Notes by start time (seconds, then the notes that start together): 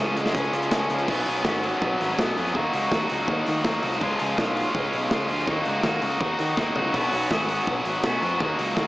Already playing: C#4
0.00 C#2 F3
0.16 C#2 G#3, closed hi-hat
0.26 snare, closed hi-hat
0.35 C#2 C#4, kick, closed hi-hat
0.44 closed hi-hat
0.53 C#2 F3, closed hi-hat
0.62 closed hi-hat
0.71 C#2 C#4, kick, snare, closed hi-hat
0.90 C#2 F3, closed hi-hat
0.98 closed hi-hat
1.07 B1 F#3 B3 C#4, kick, crash
1.26 B1 B3 C#4, open hi-hat
1.45 G#1 F#3 B3 C#4, kick, snare
1.63 B3 C#4, open hi-hat
1.82 B1, kick
2.00 G#1, snare, open hi-hat
2.18 B2 F#3 B3 C#4, kick, snare
2.37 F2 B3 C#4, open hi-hat
2.46 snare
2.55 D#2 F#3 A#3 D#4 F#4, kick
2.73 C#2 A#3 D#4 F#4, open hi-hat
2.91 D#2 F#3 A#3 D#4 F#4, kick, snare
3.09 C#2 A#3 D#4 F#4, open hi-hat
3.28 D#2, kick
3.46 D#3, snare, open hi-hat
3.65 D#2 F#3 A#3 D#4 F#4, kick, snare
3.83 C2 A#3 D#4 F#4, open hi-hat
3.92 snare
4.01 C#2 F3 G#3 C#4 F4, kick, crash
4.19 C#2 G#3 C#4 F4, open hi-hat
4.38 B1 F3 G#3 C#4 F4, kick, snare
4.56 G#3 C#4 F4, open hi-hat
4.75 C#2, kick
4.93 B1, open hi-hat
5.11 C#3 F3 G#3 C#4 F4, kick, snare
5.29 D2 G#3 C#4 F4, open hi-hat
5.39 snare
5.48 D#2 A#3 D#4 F#4, kick
5.65 C#2 D#4 F#4, open hi-hat
5.83 D#2 A#3 D#4 F#4, kick, snare
6.02 C#2 F#4, open hi-hat
6.06 D#4
6.21 D#2, kick
6.39 D#3, snare, open hi-hat
6.57 D#2 A#3 D#4 F#4, kick, snare
6.75 C#2 D#4 F#4, floor tom
6.94 B1 F#3 B3 C#4 F#4, kick, crash
7.12 B1 B3 C#4 F#4, open hi-hat
7.30 G#1 F#3 B3 C#4 F#4, kick, snare
7.49 B3 C#4 F#4, open hi-hat
7.67 B1, kick
7.85 G#1, open hi-hat
8.04 B2 F#3 B3 C#4 F#4, kick, snare
8.22 F2 B3 C#4 F#4, open hi-hat
8.40 D#2 F#3 A#3 D#4 F#4, kick
8.59 C#2 A#3 D#4 F#4, open hi-hat
8.76 D#2 F#3 A#3 D#4 F#4, kick, snare